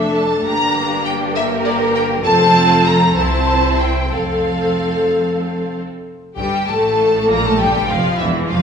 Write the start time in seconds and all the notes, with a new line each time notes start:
Already playing: F1 F2 A3 D4 A4 E5
0.16 A5
0.44 G1 G2 A#3 D4 G4 A#5
1.05 G5
1.33 A#3 G4 A#4 E5
1.65 D5
1.95 G5
2.23 F1 F2 C4 F4 A4 A5
2.85 A#5
3.15 C2 C4 E4 C5 A5
3.79 G5
4.11 F1 F2 C4 A4 F5
6.37 G1 G2 G3 G4 G5
6.68 A1 A2 A3 A4 A5
7.29 A#1 A#2 A#3 A#4 A#5
7.44 A2 A3 A4 A5
7.58 G1 G2 G3 G4 G5
7.87 F1 F2 F3 F4 F5
8.16 E1 E2 E3 E4 E5
8.46 F1 F2 F3 F4 F5